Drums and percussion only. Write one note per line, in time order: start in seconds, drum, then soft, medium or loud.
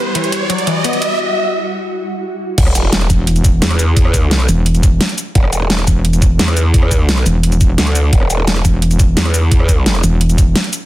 0.15 kick loud
0.15 closed hi-hat loud
0.24 closed hi-hat soft
0.32 kick loud
0.32 closed hi-hat medium
0.50 kick loud
0.50 closed hi-hat loud
0.58 closed hi-hat soft
0.67 kick loud
0.67 closed hi-hat medium
0.84 kick loud
0.84 closed hi-hat medium
0.93 closed hi-hat soft
1.02 kick loud
1.02 closed hi-hat medium
2.58 kick loud
2.58 closed hi-hat medium
2.58 crash loud
2.67 cross-stick medium
2.75 closed hi-hat medium
2.75 shaker medium
2.93 snare loud
2.93 closed hi-hat loud
3.01 cross-stick soft
3.01 closed hi-hat soft
3.10 kick medium
3.10 closed hi-hat medium
3.10 shaker medium
3.27 closed hi-hat loud
3.36 closed hi-hat soft
3.36 shaker soft
3.45 kick loud
3.45 closed hi-hat medium
3.45 shaker medium
3.62 snare loud
3.62 closed hi-hat medium
3.71 cross-stick medium
3.71 closed hi-hat soft
3.79 closed hi-hat medium
3.79 shaker medium
3.97 kick loud
3.97 closed hi-hat medium
4.05 cross-stick medium
4.14 kick medium
4.14 closed hi-hat medium
4.14 shaker medium
4.31 snare loud
4.31 closed hi-hat medium
4.40 cross-stick soft
4.40 closed hi-hat soft
4.49 closed hi-hat medium
4.49 shaker medium
4.66 closed hi-hat loud
4.75 closed hi-hat soft
4.75 shaker soft
4.83 kick loud
4.83 closed hi-hat medium
4.83 shaker medium
5.01 snare loud
5.01 closed hi-hat medium
5.09 closed hi-hat soft
5.18 closed hi-hat medium
5.18 shaker medium
5.35 kick loud
5.35 closed hi-hat medium
5.44 cross-stick medium
5.53 closed hi-hat medium
5.53 shaker medium
5.70 snare loud
5.70 closed hi-hat medium
5.79 cross-stick soft
5.79 closed hi-hat soft
5.87 kick medium
5.87 closed hi-hat medium
5.87 shaker medium
6.05 closed hi-hat loud
6.13 closed hi-hat soft
6.13 shaker soft
6.22 kick loud
6.22 closed hi-hat medium
6.22 shaker medium
6.39 snare loud
6.39 closed hi-hat medium
6.48 cross-stick medium
6.48 closed hi-hat soft
6.57 closed hi-hat medium
6.57 shaker medium
6.74 kick loud
6.74 closed hi-hat medium
6.83 cross-stick medium
6.91 kick medium
6.91 closed hi-hat medium
6.91 shaker medium
7.09 snare loud
7.09 closed hi-hat medium
7.17 cross-stick soft
7.17 closed hi-hat soft
7.26 closed hi-hat medium
7.26 shaker medium
7.43 closed hi-hat medium
7.52 closed hi-hat soft
7.52 shaker soft
7.61 kick loud
7.61 closed hi-hat medium
7.61 shaker medium
7.78 snare loud
7.78 closed hi-hat medium
7.87 closed hi-hat soft
7.95 closed hi-hat medium
7.95 shaker medium
8.13 kick loud
8.13 closed hi-hat medium
8.21 cross-stick medium
8.30 closed hi-hat medium
8.30 shaker medium
8.47 snare loud
8.47 closed hi-hat medium
8.56 cross-stick soft
8.56 closed hi-hat soft
8.65 kick medium
8.65 closed hi-hat medium
8.65 shaker medium
8.82 closed hi-hat medium
8.91 closed hi-hat soft
8.91 shaker soft
8.99 kick loud
8.99 closed hi-hat medium
8.99 shaker medium
9.17 snare loud
9.17 closed hi-hat medium
9.25 cross-stick soft
9.25 closed hi-hat soft
9.34 closed hi-hat medium
9.34 shaker medium
9.51 kick loud
9.51 closed hi-hat medium
9.60 cross-stick medium
9.69 kick medium
9.69 closed hi-hat medium
9.69 shaker medium
9.86 snare loud
9.86 closed hi-hat loud
9.95 cross-stick soft
9.95 closed hi-hat soft
10.03 closed hi-hat medium
10.03 shaker medium
10.21 closed hi-hat medium
10.30 closed hi-hat soft
10.30 shaker soft
10.38 kick loud
10.38 closed hi-hat medium
10.38 shaker medium
10.56 snare loud
10.56 closed hi-hat medium
10.64 closed hi-hat soft
10.73 closed hi-hat medium
10.73 shaker medium